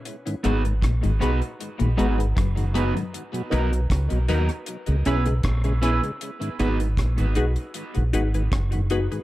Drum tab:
HH |xxxxxxxxxxxxxxxx|xxxxxxxxxxxxxxxx|xxxxxxxxxxxxxxxx|
SD |----r-------r---|----r-------r---|----r-------r---|
BD |----o-------o---|----o-------o---|----o-------o---|